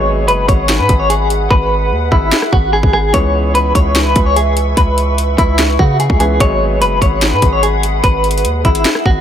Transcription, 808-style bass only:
0.00 0.30 G#1 loud
0.28 0.48 F#1 loud
0.48 0.81 G#1 loud
0.79 0.89 G#2 loud
0.89 1.48 G#1 loud
1.51 1.93 G#1 loud
1.91 2.11 D#2 loud
2.12 2.31 G#1 loud
2.53 2.82 G#1 loud
2.83 3.13 G#1 loud
3.14 3.73 C#2 loud
3.75 4.14 C#2 loud
4.16 4.75 C#2 loud
4.77 5.36 C#2 loud
5.38 5.78 C#2 loud
5.79 6.09 C#3 loud
6.10 6.39 C#2 loud
6.40 6.83 G#1 loud
6.81 7.01 F#1 loud
7.02 7.34 G#1 loud
7.32 7.42 G#2 loud
7.42 8.01 G#1 loud
8.04 8.46 G#1 loud
8.44 8.64 D#2 loud
8.65 8.84 G#1 loud
9.06 9.21 G#1 loud

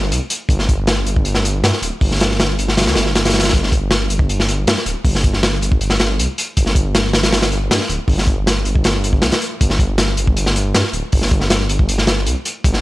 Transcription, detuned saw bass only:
0.00 0.13 G1 loud
0.11 0.20 C2 loud
0.49 1.04 G1 loud
1.06 1.62 G1 loud
1.63 1.72 G2 medium
1.82 1.91 D1 medium
2.01 2.57 G1 loud
2.58 2.77 G1 loud
2.77 2.88 G1 medium
2.87 2.95 D2 loud
2.96 3.51 G1 medium
3.53 4.08 G1 loud
4.10 4.65 G1 loud
4.67 4.75 G2 medium
4.86 4.94 D1 medium
5.05 5.60 G1 loud
5.62 6.20 G1 loud
6.19 6.27 C2 loud
6.57 7.12 G1 loud
7.14 7.69 G1 loud
7.71 7.79 G2 medium
7.89 7.98 D1 medium
8.08 8.64 G1 loud
8.65 9.24 G1 loud
9.22 9.31 C2 loud
9.61 10.16 G1 loud
10.17 10.73 G1 loud
10.74 10.83 G2 medium
10.93 11.02 D1 medium
11.13 11.68 G1 loud
11.69 12.28 G1 loud
12.26 12.35 C2 loud
12.64 12.81 G1 loud

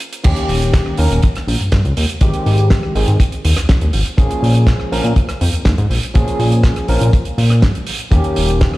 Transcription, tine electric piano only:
0.24 0.95 D#3 medium
0.24 0.95 A#3 medium
0.24 0.96 C#4 medium
0.24 0.96 G4 loud
0.98 1.19 D#3 medium
0.98 1.20 A#3 medium
0.98 1.20 C#4 medium
0.98 1.20 A#4 medium
2.20 2.92 D#3 medium
2.20 2.92 G#3 medium
2.20 2.93 C4 medium
2.20 2.93 G4 loud
2.95 3.16 D#3 medium
2.95 3.17 G#3 medium
2.95 3.17 C4 medium
2.95 3.17 G#4 medium
4.17 4.89 F3 medium
4.17 4.89 A#3 medium
4.17 4.89 C#4 medium
4.17 4.90 G#4 medium
4.92 5.13 F3 medium
4.92 5.13 A#3 medium
4.92 5.13 C#4 medium
4.92 5.13 A#4 medium
6.14 6.85 F3 medium
6.14 6.86 A#3 medium
6.14 6.86 C#4 medium
6.14 6.86 G#4 loud
6.88 7.10 F3 medium
6.88 7.10 A#3 medium
6.88 7.10 C#4 medium
6.88 7.10 A#4 medium
8.11 8.78 D#3 medium
8.11 8.78 A#3 medium
8.11 8.78 C#4 medium
8.11 8.78 G4 loud

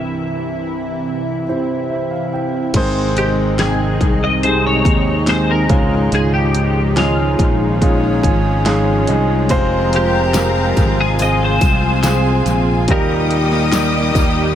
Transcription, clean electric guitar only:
0.00 2.29 E5 medium
3.18 3.29 G4 medium
3.60 4.25 G#4 medium
4.24 4.43 D#5 medium
4.43 4.65 C5 loud
4.67 5.29 C#5 medium
5.29 5.50 C5 medium
5.51 6.09 A#4 medium
6.15 6.33 G#4 medium
6.34 6.99 G4 medium
6.98 8.20 F4 medium
9.96 11.00 G4 medium
11.01 11.21 G#4 medium
11.22 11.43 D#5 loud
11.44 12.95 C5 loud
12.91 14.55 A#4 medium

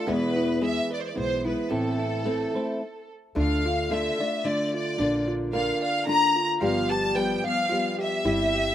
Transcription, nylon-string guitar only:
0.07 0.61 E2 medium
0.07 0.61 B2 medium
0.07 0.61 E3 medium
0.07 0.60 G#3 medium
0.07 0.61 B3 medium
0.07 0.62 E4 medium
0.61 1.15 E3 medium
0.61 1.15 G#3 medium
0.61 1.16 B3 medium
0.61 1.17 E4 medium
1.15 1.44 E3 soft
1.15 1.44 G#3 medium
1.15 1.44 B3 medium
1.15 1.43 E4 medium
1.44 1.69 E3 soft
1.44 1.70 G#3 soft
1.44 1.70 B3 soft
1.44 1.70 E4 soft
1.70 2.25 A2 medium
1.70 2.24 E3 medium
1.70 2.25 A3 medium
1.70 2.25 C4 medium
1.70 2.25 E4 medium
2.25 2.54 E3 medium
2.25 2.55 A3 medium
2.25 2.54 C4 medium
2.25 2.53 E4 medium
2.55 2.81 A3 soft
2.55 2.81 C4 soft
2.55 2.81 E4 soft
3.35 3.90 D3 medium
3.35 3.89 A3 medium
3.35 3.91 D4 medium
3.35 3.91 F4 medium
3.90 4.20 D3 medium
3.90 4.20 A3 medium
3.90 4.19 D4 medium
3.90 4.18 F4 medium
4.20 4.44 A3 soft
4.20 4.44 D4 soft
4.20 4.45 F4 soft
4.44 4.99 D3 medium
4.44 4.99 A3 medium
4.44 5.00 D4 medium
4.44 5.00 F4 medium
4.99 5.53 A#2 medium
4.99 5.53 D3 medium
4.99 5.52 A#3 medium
4.99 5.54 D4 medium
4.99 5.55 F4 medium
5.53 6.06 D3 medium
5.53 6.06 A#3 medium
5.53 6.07 D4 medium
5.53 6.09 F4 medium
6.07 6.60 D3 medium
6.07 6.62 A#3 medium
6.07 6.61 D4 soft
6.07 6.62 F4 medium
6.61 7.15 G2 medium
6.61 7.16 D3 medium
6.61 7.14 F3 medium
6.61 7.16 G3 medium
6.61 7.16 B3 medium
6.61 7.16 G4 medium
7.16 7.45 F3 medium
7.16 7.44 G3 medium
7.16 7.43 B3 medium
7.16 7.43 G4 medium
7.45 7.70 F3 soft
7.45 7.70 G3 soft
7.45 7.70 B3 soft
7.45 7.70 G4 soft
7.71 8.24 F3 soft
7.71 8.23 G3 medium
7.71 8.25 B3 medium
7.71 8.24 G4 medium
8.24 8.75 G3 medium
8.24 8.75 C4 medium
8.24 8.75 E4 medium
8.24 8.75 G4 medium

